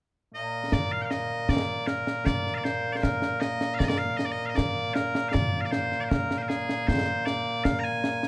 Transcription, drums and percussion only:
0.72 concert bass drum, snare
1.11 snare
1.49 concert bass drum, snare
1.87 snare
2.07 snare
2.26 concert bass drum, snare
2.47 snare
2.65 snare
3.03 concert bass drum, snare
3.22 snare
3.42 snare
3.61 snare
3.80 concert bass drum, snare
4.19 snare
4.58 concert bass drum, snare
4.96 snare
5.15 snare
5.34 concert bass drum, snare
5.73 snare
5.92 snare
6.11 concert bass drum, snare
6.31 snare
6.50 snare
6.69 snare
6.88 concert bass drum, snare
7.27 snare
7.65 concert bass drum, snare
8.04 snare
8.23 snare

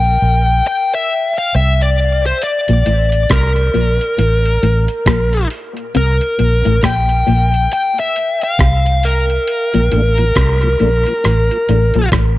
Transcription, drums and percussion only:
0.04 cabasa
0.22 cabasa
0.65 cabasa
1.09 cabasa
1.36 cabasa
1.80 cabasa
1.98 cabasa
2.42 closed hi-hat, cabasa
2.68 closed hi-hat
2.86 closed hi-hat, cabasa
3.12 closed hi-hat, cabasa
3.30 kick, cross-stick, closed hi-hat
3.56 closed hi-hat, cabasa
3.74 open hi-hat, cabasa
4.01 closed hi-hat
4.18 closed hi-hat, cabasa
4.46 closed hi-hat
4.62 closed hi-hat, cabasa
4.88 closed hi-hat, cabasa
5.06 kick, cross-stick, closed hi-hat
5.33 closed hi-hat, cabasa
5.50 open hi-hat, cabasa
5.77 closed hi-hat
5.95 closed hi-hat
6.21 closed hi-hat
6.39 closed hi-hat
6.65 closed hi-hat
6.83 kick, cross-stick, closed hi-hat
7.09 closed hi-hat
7.27 open hi-hat
7.54 closed hi-hat
7.72 closed hi-hat
7.98 closed hi-hat
8.16 closed hi-hat
8.41 closed hi-hat
8.59 kick, cross-stick, closed hi-hat
8.86 closed hi-hat
9.03 open hi-hat
9.30 closed hi-hat
9.48 closed hi-hat
9.74 closed hi-hat
9.92 closed hi-hat
10.18 closed hi-hat
10.35 kick, cross-stick, closed hi-hat
10.62 closed hi-hat
10.80 open hi-hat
11.07 closed hi-hat
11.24 cross-stick, closed hi-hat
11.51 closed hi-hat
11.69 closed hi-hat
11.94 closed hi-hat
12.12 kick, cross-stick, closed hi-hat

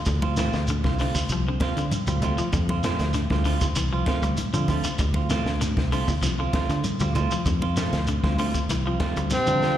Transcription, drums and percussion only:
0.05 kick, closed hi-hat, high conga, low conga, shekere
0.22 high conga
0.37 snare, closed hi-hat, shekere
0.53 snare, shekere
0.67 closed hi-hat, high conga, shekere
0.84 kick, snare, high conga
0.99 snare, open hi-hat, shekere
1.15 kick, low conga, shekere
1.29 closed hi-hat, high conga, shekere
1.60 kick, snare, closed hi-hat, high conga
1.77 closed hi-hat, shekere
1.91 closed hi-hat, high conga, shekere
2.07 high conga, shekere
2.22 closed hi-hat, low conga, shekere
2.38 shekere
2.53 kick, closed hi-hat, high conga, low conga, shekere
2.69 high conga
2.83 snare, closed hi-hat, shekere
2.99 snare, closed hi-hat, shekere
3.13 snare, closed hi-hat, high conga, shekere
3.30 kick, snare, high conga
3.45 open hi-hat, high conga, shekere
3.61 kick, closed hi-hat, low conga, shekere
3.75 closed hi-hat, shekere
4.06 kick, snare, closed hi-hat, high conga
4.22 closed hi-hat, shekere
4.37 closed hi-hat, high conga, shekere
4.54 shekere
4.68 kick, open hi-hat, low conga, shekere
4.84 closed hi-hat, shekere
4.98 kick, closed hi-hat, high conga, low conga, shekere
5.14 high conga
5.30 snare, closed hi-hat, shekere
5.46 snare, shekere
5.61 snare, closed hi-hat, high conga, shekere
5.77 kick, snare, high conga
5.92 open hi-hat, shekere
6.08 kick, low conga, shekere
6.23 snare, closed hi-hat, high conga, shekere
6.53 kick, snare, closed hi-hat, high conga
6.69 snare, closed hi-hat, shekere
6.84 closed hi-hat, high conga, shekere
7.00 high conga, shekere
7.15 closed hi-hat, low conga, shekere
7.31 shekere
7.46 kick, closed hi-hat, high conga, low conga, shekere
7.62 high conga
7.77 snare, closed hi-hat, shekere
7.93 snare, closed hi-hat, shekere
8.07 closed hi-hat, high conga, shekere
8.24 kick, snare, high conga
8.38 open hi-hat, shekere
8.54 kick, closed hi-hat, shekere
8.69 snare, closed hi-hat, high conga, shekere
9.00 kick, snare, closed hi-hat, high conga
9.16 closed hi-hat, shekere
9.30 snare, high conga, shekere
9.47 high conga, shekere
9.62 snare, shekere

